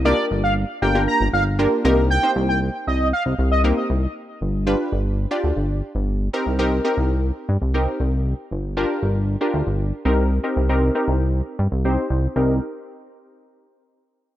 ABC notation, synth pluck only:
X:1
M:4/4
L:1/16
Q:1/4=117
K:Cm
V:1 name="Synth pluck"
[B,DFGB]4 z2 [B,DFGB] [B,DFGB]4 z [B,DFGB]2 [B,CEGB]2 | z [B,CEGc]6 z4 z [B,CEGB]3 z | z4 [DFG=B]4 z [DFGd]6 z | z [CEGB] z [CEGB] z [CEGB]4- [CEGB] z2 [CEGB]4 |
z4 [DFGB]4 z [DFGB]4- [DFGB] [CEGB]2 | z [CEGB] z [CEGB] z [CEGB]4- [CEGB] z2 [CEGc]4 | [CEGB]2 z12 z2 |]